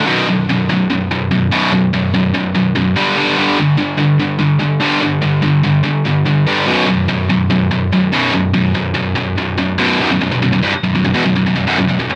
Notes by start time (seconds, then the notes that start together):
0.05 B1 F#2 B2
0.28 B1 F#2
0.49 B1 F#2
0.69 B1 F#2
0.90 B1 F#2
1.11 B1 F#2
1.31 B1 F#2
1.52 B1 F#2 B2
1.72 B1 F#2
1.93 B1 F#2
2.14 B1 F#2
2.34 B1 F#2
2.55 B1 F#2
2.75 B1 F#2
2.96 G2 D3 G3
3.17 G2 D3 G3
3.37 G2 D3 G3
3.59 G2 D3
3.77 G2 D3
3.97 G2 D3
4.19 G2 D3
4.39 G2 D3
4.60 G2 D3
4.80 G2 D3 G3
5.01 G2 D3
5.22 G2 D3
5.42 G2 D3
5.63 G2 D3
5.83 G2 D3
6.05 G2 D3
6.26 G2 D3
6.47 G2 D3 G3
6.67 B1 F#2 B2
6.88 B1 F#2
7.08 B1 F#2
7.30 B1 F#2
7.50 B1 F#2
7.71 B1 F#2
7.92 B1 F#2
8.12 B1 F#2 B2
8.33 B1 F#2
8.54 B1 F#2
8.75 B1 F#2
8.94 B1 F#2
9.15 B1 F#2
9.38 B1 F#2
9.58 B1 F#2
9.78 B1 F#2 B2
10.00 B1 F#2
10.11 B1 F#2
10.21 B1 F#2
10.31 B1 F#2
10.42 B1 F#2
10.52 B1 F#2
10.63 C2 G2
10.73 muted distorted electric guitar stroke
10.84 B1 F#2
10.95 B1 F#2
11.04 B1 F#2
11.14 E2 B2
11.25 B1 F#2
11.36 B1 F#2
11.46 B1 F#2
11.56 B1 F#2
11.67 B1 F#2
11.78 B1 F#2
11.88 B1 F#2
11.99 B1 F#2
12.10 muted distorted electric guitar stroke